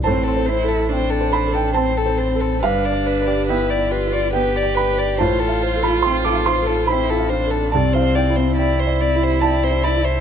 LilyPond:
<<
  \new Staff \with { instrumentName = "Felt piano" } { \time 3/4 \key a \minor \tempo 4 = 70 << { a''4. b''16 g''16 a''4 | f''4 g''4 g''8 b''8 | a''8. b''16 c'''16 d'''16 c'''8 b''4 | a''16 f''16 g''4. a''8 b''8 | } \\ { \tuplet 3/2 { a,8 c''8 a'8 c'8 c''8 a'8 c'8 c''8 a'8 } | \tuplet 3/2 { g,8 d''8 b'8 b8 d''8 b'8 b8 d''8 b'8 } | \tuplet 3/2 { a,8 f''8 a'8 c'8 f''8 a'8 c'8 f''8 a'8 } | \tuplet 3/2 { c,8 d''8 e'8 c'8 d''8 e'8 c'8 d''8 e'8 } | } >> }
  \new Staff \with { instrumentName = "Violin" } { \time 3/4 \key a \minor c''16 a'16 c''16 a'16 c''16 a'16 c''16 a'16 c''16 a'16 c''16 a'16 | b'16 d''16 b'16 d''16 b'16 d''16 b'16 d''16 b'16 d''16 b'16 d''16 | c''16 a'16 c''16 a'16 c''16 a'16 c''16 a'16 c''16 a'16 c''16 a'16 | d''16 c''16 d''16 c''16 d''16 c''16 d''16 c''16 d''16 c''16 d''16 c''16 | }
  \new Staff \with { instrumentName = "Synth pluck" } { \time 3/4 \key a \minor a'16 c''16 c''16 a'16 e''16 a''16 a'16 e''16 c''16 a'16 a''16 c''16 | g'16 b'16 b'16 g'16 d''16 g''16 g'16 d''16 b'16 g'16 g''16 b'16 | f'16 a'16 a'16 f'16 c''16 f''16 f'16 c''16 a'16 f'16 f''16 a'16 | c'16 e'16 e'16 c'16 g'16 c''16 c'16 g'16 e'16 c'16 c''16 e'16 | }
  \new Staff \with { instrumentName = "Cello" } { \time 3/4 \key a \minor c'8 e'8 d'4 c'4 | d'4 e'8 f'8 g'4 | f'2 e'8 d'8 | c'4 e'2 | }
  \new Staff \with { instrumentName = "Sub bass" } { \clef bass \time 3/4 \key a \minor a,,2. | g,,2. | a,,2. | c,2. | }
>>